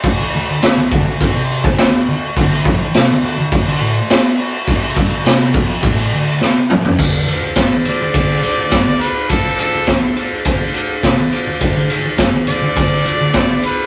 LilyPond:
<<
  \new Staff \with { instrumentName = "Harmonica" } { \time 4/4 \key d \major \tempo 4 = 104 r1 | r1 | r1 | r4. d''2 b'8 |
a'8 a'8 r2. | r4. d''2 b'8 | }
  \new Staff \with { instrumentName = "Transistor combo organ" } { \time 4/4 \key d \major <fis' a' d''>8 <fis' a' d''>8 <fis' a' d''>8 <fis' a' d''>8 <fis' a' d''>8 <fis' a' d''>8 <fis' a' d''>8 <fis' a' d''>8 | <fis' a' d''>8 <fis' a' d''>8 <fis' a' d''>8 <fis' a' d''>8 <fis' a' d''>8 <fis' a' d''>8 <fis' a' d''>8 <fis' a' d''>8 | <fis' a' d''>8 <fis' a' e''>8 <fis' a' d''>8 <fis' a' d''>8 <fis' a' d''>8 <fis' a' d''>8 <fis' a' d''>8 <fis' a' d''>8 | <fis' a' d''>8 <fis' a' d''>8 <fis' a' d''>8 <fis' a' d''>8 <fis' a' d''>8 <fis' a' d''>8 <fis' a' d''>8 <fis' a' d''>8 |
<fis' a' d''>8 <fis' a' d''>8 <fis' a' d''>8 <fis' a' d''>8 <fis' a' d''>8 <fis' a' d''>8 <fis' a' d''>8 <fis' a' d''>8 | <fis' a' d''>8 <fis' a' d''>8 <fis' a' d''>8 <fis' a' d''>8 <fis' a' d''>8 <fis' a' d''>8 <fis' a' d''>8 <fis' a' d''>8 | }
  \new Staff \with { instrumentName = "Distorted electric guitar" } { \clef bass \time 4/4 \key d \major r8 d,16 d,16 d,16 r16 d,16 d,16 d,16 c8 d,16 d,8 d,8 | d,16 d,16 f,16 r16 c16 d,16 d,16 d,16 d,16 d16 a,16 r4 r16 | c8 g,16 d,16 c8 f,8 a,8 d,8 c8 f,8 | d,16 d,16 d,16 r16 g,16 r8 d,16 d,8 d,16 d,16 g,16 d,16 r8 |
r8 d,16 r16 f,16 d,8 r16 d,16 d,8 r16 c16 r8 d,16 | d,16 d,16 d,16 r16 g,16 r8 d,16 d,8 d,16 d,16 g,16 d,16 r8 | }
  \new DrumStaff \with { instrumentName = "Drums" } \drummode { \time 4/4 <cymc bd>4 <cymc sn>8 bd8 <cymc bd>8. bd16 <cymc sn>4 | <cymc bd>8 bd8 <cymc sn>4 <cymc bd>4 <cymc sn>4 | <cymc bd>8 bd8 <cymc sn>8 bd8 <cymc bd>4 sn8 toml16 tomfh16 | <cymc bd>8 cymr8 <bd cymr sn>8 cymr8 <bd cymr>8 cymr8 <bd cymr sn>8 cymr8 |
<bd cymr>8 cymr8 <bd cymr sn>8 cymr8 <bd cymr>8 cymr8 <bd cymr sn>8 cymr8 | <bd cymr>8 cymr8 <bd cymr sn>8 cymr8 <bd cymr>8 cymr8 <bd cymr sn>8 cymr8 | }
>>